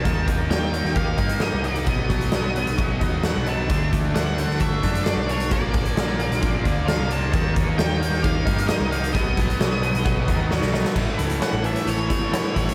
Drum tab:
CC |----------------|----------------|----------------|----------------|
HH |x-x-x-x-x-xxx-xx|x-xxx-xxx-x-x-x-|x-x-x-x-x-xxx-xx|x-xxx-xxx-x-x-x-|
SD |----o--o----o---|----o-------o---|----o--o----o---|----o--o----o---|
BD |o-o-----o-o-----|o-o-----o-o-----|o-o-----o-o-----|o-o-----o-o-----|

CC |----------------|----------------|x---------------|
HH |x-x-x-x-x-xxx-xx|x-xxx-xxx-x-----|--xxx-xxx-x-x-xx|
SD |----o--o----o---|----o-------oooo|----o-------o---|
BD |o-o-----o-o-----|o-o-----o-o-----|o---------o---o-|